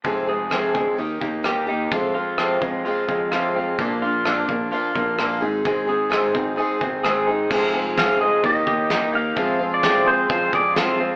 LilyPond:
<<
  \new Staff \with { instrumentName = "Pedal steel guitar" } { \time 4/4 \key f \dorian \tempo 4 = 129 r1 | r1 | r1 | r1 |
r4 f''8 ees''8 ees''4. f''8~ | f''8. d''8. c''8 c''8 d''8 c''8. r16 | }
  \new Staff \with { instrumentName = "Accordion" } { \time 4/4 \key f \dorian r1 | r1 | r1 | r1 |
<c' f' aes'>2 <bes ees' g'>2 | <c' f' aes'>1 | }
  \new Staff \with { instrumentName = "Clean electric guitar" } { \time 4/4 \key f \dorian f,8 aes'8 c'8 aes8 ees8 bes8 g'8 ees'8 | f,8 f'8 c'8 aes8 f'8 aes8 f'8 c'8 | bes,8 f'8 d'8 bes8 f'8 bes8 f'8 aes,8 | aes,8 aes'8 ees'8 c'8 aes'8 c'8 aes'8 ees'8 |
f4 c'8 aes'8 ees8 g'8 ees'8 bes8 | f4 c'8 aes'8 f'8 aes'8 f'8 c'8 | }
  \new Staff \with { instrumentName = "Steel-string acoustic guitar" } { \time 4/4 \key f \dorian <f, c f aes c' aes'>8 <f aes c' aes'>8 <f, c f aes c' aes'>8 <f aes c' aes'>8 <ees bes ees' g'>8 <bes ees' g'>8 <ees bes ees' g'>8 <bes ees' g'>8 | <f, c f aes c' f'>8 <f aes c' f'>8 <f, c f aes c' f'>8 <f aes c' f'>8 <f aes c' f'>8 <f aes c' f'>8 <f, c f aes c' f'>8 <f aes c' f'>8 | <bes, f bes d' f'>8 <bes d' f'>8 <bes, f bes d' f'>8 <bes d' f'>8 <f bes d' f'>8 <bes d' f'>8 <bes, f bes d' f'>8 <aes c' ees' aes'>8 | <aes, ees aes c' ees' aes'>8 <aes c' ees' aes'>8 <aes, ees aes c' ees' aes'>8 <aes c' ees' aes'>8 <aes c' ees' aes'>8 <aes c' ees' aes'>8 <aes, ees aes c' ees' aes'>8 <aes c' ees' aes'>8 |
<f, c f aes c' aes'>8 <f aes c' aes'>8 <f, c f aes c' aes'>8 <f aes c' aes'>8 <ees bes ees' g'>8 <bes ees' g'>8 <ees bes ees' g'>8 <bes ees' g'>8 | <f, c f aes c' f'>8 <f aes c' f'>8 <f, c f aes c' f'>8 <f aes c' f'>8 <f aes c' f'>8 <f aes c' f'>8 <f, c f aes c' f'>8 <f aes c' f'>8 | }
  \new Staff \with { instrumentName = "Fingered electric bass" } { \clef bass \time 4/4 \key f \dorian f,,4. d,16 r16 ees,8 ees,4. | f,4. f,8 r8 f,4. | bes,,4. bes,,8 r8 bes,,4 aes,,8~ | aes,,4. aes,,8 r8 aes,,4. |
f,,2 ees,8 ees,4. | f,2 f,8 f,4. | }
  \new DrumStaff \with { instrumentName = "Drums" } \drummode { \time 4/4 <hho bd>4 <hho ss>8 bd8 hho8 bd8 <hho ss>4 | <hho bd>4 <hho ss>8 bd8 hho8 bd8 <hho ss>4 | <hho bd>4 <hho ss>8 bd8 hho8 bd8 <hho ss>4 | <hho bd>4 <hho ss>8 bd8 hho8 bd8 <hho ss>4 |
<cymc bd>4 <hho sn>4 <hho bd>8 bd8 <hho sn>4 | <hho bd>4 sn4 <hho bd>8 bd8 sn4 | }
>>